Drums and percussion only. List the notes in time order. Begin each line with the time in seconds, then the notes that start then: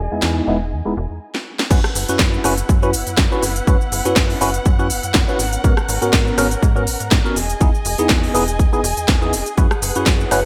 0.22 snare
1.35 snare
1.59 snare
1.71 kick, closed hi-hat, crash, shaker
1.84 cross-stick, shaker
1.95 open hi-hat, shaker
2.09 closed hi-hat, shaker
2.19 kick, snare, closed hi-hat, shaker
2.34 shaker
2.44 cross-stick, open hi-hat, shaker
2.57 closed hi-hat, shaker
2.69 kick, closed hi-hat, shaker
2.83 shaker
2.93 open hi-hat, shaker
3.07 closed hi-hat, shaker
3.17 kick, snare, closed hi-hat, shaker
3.32 shaker
3.43 open hi-hat, shaker
3.56 closed hi-hat, shaker
3.67 kick, closed hi-hat, shaker
3.81 shaker
3.92 open hi-hat, shaker
4.05 closed hi-hat, shaker
4.16 kick, snare, closed hi-hat, shaker
4.30 open hi-hat, shaker
4.41 open hi-hat, shaker
4.54 closed hi-hat, shaker
4.65 kick, closed hi-hat, shaker
4.79 shaker
4.90 open hi-hat, shaker
5.03 closed hi-hat, shaker
5.14 kick, snare, closed hi-hat, shaker
5.28 shaker
5.39 open hi-hat, shaker
5.53 closed hi-hat, shaker
5.64 kick, closed hi-hat, shaker
5.77 cross-stick, shaker
5.88 open hi-hat, shaker
6.02 closed hi-hat, shaker
6.13 kick, snare, closed hi-hat, shaker
6.27 shaker
6.38 cross-stick, open hi-hat, shaker
6.51 closed hi-hat, shaker
6.63 kick, closed hi-hat, shaker
6.76 shaker
6.87 open hi-hat, shaker
7.00 closed hi-hat, shaker
7.11 kick, snare, closed hi-hat, shaker
7.25 shaker
7.36 open hi-hat, shaker
7.50 closed hi-hat, shaker
7.61 kick, closed hi-hat, shaker
7.74 shaker
7.85 open hi-hat, shaker
7.98 closed hi-hat, shaker
8.09 kick, snare, closed hi-hat, shaker
8.23 open hi-hat, shaker
8.35 open hi-hat, shaker
8.48 closed hi-hat, shaker
8.59 kick, closed hi-hat, shaker
8.73 shaker
8.84 open hi-hat, shaker
8.97 closed hi-hat, shaker
9.08 kick, snare, closed hi-hat, shaker
9.22 shaker
9.33 open hi-hat, shaker
9.46 closed hi-hat, shaker
9.57 kick, closed hi-hat, shaker
9.71 cross-stick, shaker
9.82 open hi-hat, shaker
9.95 closed hi-hat, shaker
10.06 kick, snare, closed hi-hat, shaker
10.20 shaker
10.31 cross-stick, open hi-hat, shaker